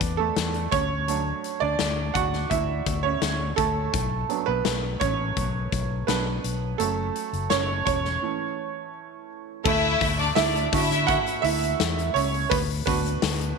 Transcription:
Already playing: G3 B3 D4 E4 B4 D5
0.01 E2, kick, closed hi-hat
0.17 A3 A4
0.36 E2, snare, closed hi-hat
0.54 closed hi-hat
0.71 D2 C#4 C#5, kick, closed hi-hat
1.08 F#3 A3 D4, closed hi-hat
1.44 closed hi-hat
1.60 D2 D4 D5
1.79 D2, snare, closed hi-hat
2.14 D2 F#4 F#5, kick, closed hi-hat
2.33 snare
2.50 D2 E4 E5, kick, closed hi-hat
2.86 D2, kick, closed hi-hat
3.03 C#4 C#5
3.22 D2, snare, closed hi-hat
3.56 D2 A3 A4, kick, closed hi-hat
3.93 B1, kick, closed hi-hat
4.29 F#3 B3 D4, closed hi-hat
4.46 B1 B3 B4
4.65 B1, snare, closed hi-hat
5.00 A1 C#4 C#5, kick, closed hi-hat
5.37 B1, kick, closed hi-hat
5.72 B1, kick, closed hi-hat
6.07 B1 F#3 B3 D4 B4, snare, closed hi-hat
6.44 B1, closed hi-hat
6.78 F#1 F#3 A3 C#4 A4, closed hi-hat
7.16 closed hi-hat
7.33 F#1, closed hi-hat
7.50 F#1 C#4 C#5, snare, closed hi-hat
7.85 E1 C#4 C#5, kick, closed hi-hat
8.05 snare
8.22 E3 A3 C#4
9.64 D2 A3 E4 A4 E5, kick, crash
10.01 D2, kick, hi-hat pedal, open hi-hat
10.18 D4 D5, open hi-hat
10.35 D2 D4 E4 D5 E5, snare, hi-hat pedal, open hi-hat
10.55 hi-hat pedal, open hi-hat
10.72 D3 D4 E4 F#4 E5, kick, hi-hat pedal, open hi-hat
10.91 snare, hi-hat pedal, open hi-hat
11.07 F#4 F#5, kick, hi-hat pedal, open hi-hat
11.26 hi-hat pedal, open hi-hat
11.42 D2 E4 E5, hi-hat pedal, open hi-hat
11.62 hi-hat pedal, open hi-hat
11.79 E2, snare, hi-hat pedal, open hi-hat
11.98 hi-hat pedal
12.14 C#2 C#4 C#5, hi-hat pedal, open hi-hat
12.34 open hi-hat
12.50 D2 B3 B4, kick, hi-hat pedal, open hi-hat
12.69 hi-hat pedal, open hi-hat
12.86 D2 B3 D4 F#4 B4, kick, hi-hat pedal, open hi-hat
13.05 hi-hat pedal, open hi-hat
13.22 D2, snare, hi-hat pedal, open hi-hat
13.40 hi-hat pedal, open hi-hat

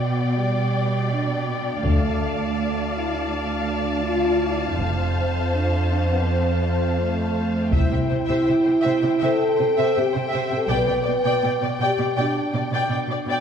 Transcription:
Already playing: B2 B3 D5 G5
0.36 G3
1.13 D4
1.83 D2 A3 F5 A5, taiko
2.59 A3
2.97 E4
3.14 D4
3.32 D4
4.03 F4
4.41 E4
4.61 D4
4.78 F1 F2 C4 C5
5.53 D4
5.92 C4
6.11 B3
6.28 C4
7.01 A3
7.72 C2 C3 E4 C5 E5 G5, taiko
7.91 C3 C5 E5
8.10 C3 C5
8.26 C3 C5 E5
8.44 C5 E5
8.48 C3
8.62 C3 C5
8.82 C3 C5 E5
9.01 C3 C5 E5
9.21 C3 A4 C5 E5
9.58 C3 C5
9.77 C3 C5 E5
9.95 C3 G4 C5 E5
10.13 C3 C5
10.30 C3 C5 E5
10.35 G4
10.49 C3 C5 E5
10.56 A4
10.68 B1 B2 D5 G5
10.74 B4
10.87 B2 D5 G5
11.03 D5
11.08 B2
11.23 B2 D5 G5
11.43 B2 D5 G5
11.61 B2 D5
11.80 B2 G4 D5 G5
11.97 B2 D5 G5
12.16 B2 D4 D5 G5
12.53 B2 D5
12.71 B2 D5 G5
12.89 B2 D5 G5
13.07 B2 D5
13.26 B2 D5
13.30 G5

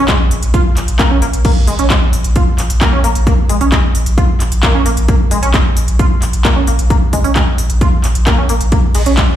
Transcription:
0.08 G#3, kick, clap, closed hi-hat
0.20 A#1
0.31 A#1, open hi-hat
0.43 A#1, closed hi-hat
0.54 F4, kick, closed hi-hat
0.66 A#1
0.77 A#1, clap, open hi-hat
0.88 A#1, closed hi-hat
0.99 A#3, kick, clap, closed hi-hat
1.11 A#1 C#4
1.22 A#1 A#3, open hi-hat
1.33 A#1, closed hi-hat
1.45 A#3, kick, closed hi-hat, crash
1.57 A#1
1.67 A#1 G#3, open hi-hat
1.79 A#1 C#4, closed hi-hat
1.90 G#3, kick, clap, closed hi-hat
2.02 A#1
2.13 A#1, open hi-hat
2.24 A#1, closed hi-hat
2.36 F4, kick, closed hi-hat
2.47 A#1
2.58 A#1, clap, open hi-hat
2.70 A#1, closed hi-hat
2.81 A#3, kick, clap, closed hi-hat
2.93 A#1 C#4
3.04 A#1 A#3, open hi-hat
3.15 A#1, closed hi-hat
3.27 A#3, kick, closed hi-hat
3.38 A#1
3.49 A#1 G#3, open hi-hat
3.61 A#1 C#4, open hi-hat
3.72 G#3, kick, clap, closed hi-hat
3.84 A#1
3.95 A#1, open hi-hat
4.06 A#1, closed hi-hat
4.18 F4, kick, closed hi-hat
4.29 A#1
4.40 A#1, clap, open hi-hat
4.52 A#1, closed hi-hat
4.63 A#3, kick, clap, closed hi-hat
4.75 A#1 C#4
4.86 A#1 A#3, open hi-hat
4.97 A#1, closed hi-hat
5.08 A#3, kick, closed hi-hat
5.20 A#1
5.31 A#1 G#3, open hi-hat
5.43 A#1 C#4, closed hi-hat
5.54 G#3, kick, clap, closed hi-hat
5.65 A#1
5.77 A#1, open hi-hat
5.88 A#1, closed hi-hat
5.99 F4, kick, closed hi-hat
6.11 A#1
6.22 A#1, clap, open hi-hat
6.33 A#1, closed hi-hat
6.45 A#3, kick, clap, closed hi-hat
6.56 A#1 C#4
6.67 A#1 A#3, open hi-hat
6.79 A#1, closed hi-hat
6.90 A#3, kick, closed hi-hat
7.02 A#1
7.13 A#1 G#3, kick, open hi-hat
7.24 A#1 C#4, open hi-hat
7.36 G#3, kick, clap, closed hi-hat
7.47 A#1
7.58 A#1, open hi-hat
7.70 A#1, closed hi-hat
7.81 F4, kick, closed hi-hat
7.93 A#1
8.04 A#1, clap, open hi-hat
8.15 A#1, closed hi-hat
8.27 A#3, kick, clap, closed hi-hat
8.38 A#1 C#4
8.49 A#1 A#3, open hi-hat
8.61 A#1, closed hi-hat
8.72 A#3, kick, closed hi-hat
8.84 A#1
8.95 A#1 G#3, open hi-hat, ride
9.06 A#1 C#4, closed hi-hat
9.17 G#3, kick, clap, closed hi-hat
9.29 A#1

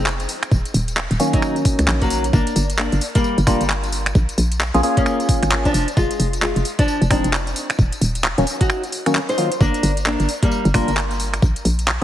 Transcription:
Already playing: F1
0.06 clap, tambourine
0.20 closed hi-hat, tambourine
0.29 open hi-hat, tambourine
0.43 finger snap, closed hi-hat, tambourine
0.51 D#1, kick, tambourine
0.65 closed hi-hat, tambourine
0.74 D#1, open hi-hat, tambourine
0.88 closed hi-hat, tambourine
0.97 clap
1.11 D#1, closed hi-hat, tambourine
1.20 D#3 F#3 A#3 C#4, open hi-hat, tambourine
1.33 F#3 D#4, kick, closed hi-hat, tambourine
1.42 finger snap, tambourine
1.56 closed hi-hat, tambourine
1.65 kick, open hi-hat, tambourine
1.79 C#2, finger snap, closed hi-hat, tambourine
1.88 A#1, clap, tambourine
2.01 F#3 A#3, kick, closed hi-hat, tambourine
2.10 open hi-hat, tambourine
2.24 closed hi-hat, tambourine
2.33 G1 A#3 D4, kick, tambourine
2.47 closed hi-hat, tambourine
2.56 G1, open hi-hat, tambourine
2.70 closed hi-hat, tambourine
2.79 A#3 D4, clap, tambourine
2.92 G1, closed hi-hat, tambourine
3.01 open hi-hat, tambourine
3.15 G3 A#3, kick, closed hi-hat, tambourine
3.24 tambourine
3.38 G1, closed hi-hat, tambourine
3.47 F1 G3 A#3 D4 F4, finger snap, kick, open hi-hat, tambourine
3.61 G1, closed hi-hat, tambourine
3.70 clap, tambourine
3.84 closed hi-hat, tambourine
3.92 open hi-hat, tambourine
4.06 finger snap, closed hi-hat, tambourine
4.15 A#1, kick, tambourine
4.29 closed hi-hat, tambourine
4.38 A#1, open hi-hat, tambourine
4.52 closed hi-hat, tambourine
4.61 clap, tambourine
4.74 A#1 A#3 C#4 F4 G#4, closed hi-hat, tambourine
4.83 A#3 C#4 F4 G#4, open hi-hat, tambourine
4.97 A#3 C#4, kick, closed hi-hat, tambourine
5.06 finger snap, tambourine
5.20 closed hi-hat, tambourine
5.29 kick, open hi-hat, tambourine
5.42 G#1, finger snap, closed hi-hat, tambourine
5.51 clap, tambourine
5.65 F3 D4, kick, closed hi-hat, tambourine
5.74 F1, open hi-hat, tambourine
5.88 closed hi-hat, tambourine
5.97 F1 G#3 F4, kick, tambourine
6.11 closed hi-hat, tambourine
6.20 F1, open hi-hat, tambourine
6.33 closed hi-hat, tambourine
6.42 G#3 F4, clap, tambourine
6.56 F1, closed hi-hat, tambourine
6.65 open hi-hat, tambourine
6.79 F3 D4, kick, closed hi-hat, tambourine
6.88 tambourine
7.02 F1, closed hi-hat, tambourine
7.10 D#1 F3 G#3 C4 D4 D#4, finger snap, kick, open hi-hat, tambourine
7.24 F1, closed hi-hat, tambourine
7.33 clap, tambourine
7.47 closed hi-hat, tambourine
7.56 open hi-hat, tambourine
7.70 finger snap, closed hi-hat, tambourine
7.79 D#1, kick, tambourine
7.92 closed hi-hat, tambourine
8.01 D#1, open hi-hat, tambourine
8.15 closed hi-hat, tambourine
8.24 clap
8.38 D#1 D#3 F#3 A#3 C#4, closed hi-hat, tambourine
8.47 open hi-hat, tambourine
8.60 D#4 F#4, kick, closed hi-hat, tambourine
8.70 finger snap, tambourine
8.84 closed hi-hat, tambourine
8.92 open hi-hat, tambourine
9.06 D#3 F#3 A#3 C#4, finger snap, closed hi-hat, tambourine
9.15 clap, tambourine
9.29 D#4 C5, closed hi-hat, tambourine
9.38 D#3 F#3 A#3 F4, open hi-hat, tambourine
9.52 closed hi-hat, tambourine
9.61 G1 A#3 D4, kick, tambourine
9.74 closed hi-hat, tambourine
9.83 G1, open hi-hat, tambourine
9.97 closed hi-hat, tambourine
10.06 A#3 D4, clap, tambourine
10.20 G1, closed hi-hat, tambourine
10.29 open hi-hat, tambourine
10.42 G3 A#3, kick, closed hi-hat, tambourine
10.51 tambourine
10.65 G1, closed hi-hat, tambourine
10.74 F1 G3 A#3 D4 F4, finger snap, kick, open hi-hat, tambourine
10.88 G1, closed hi-hat, tambourine
10.97 clap, tambourine
11.11 closed hi-hat, tambourine
11.20 open hi-hat, tambourine
11.34 finger snap, closed hi-hat, tambourine
11.42 A#1, kick, tambourine
11.56 closed hi-hat, tambourine
11.65 A#1, open hi-hat, tambourine
11.79 closed hi-hat, tambourine
11.88 clap, tambourine

